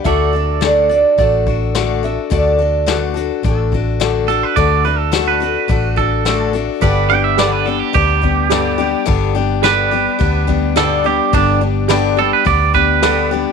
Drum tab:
HH |x-xxx-xx|x-xxx-xx|x-xxx-xx|o-o-o-o-|
SD |--o---o-|--o---o-|--o---o-|--o---o-|
BD |o---oo--|o---oo--|o---oo--|o---oo--|

HH |o-o-o-o-|o-o-o-o-|
SD |--o---o-|--o---o-|
BD |o---oo--|o---oo--|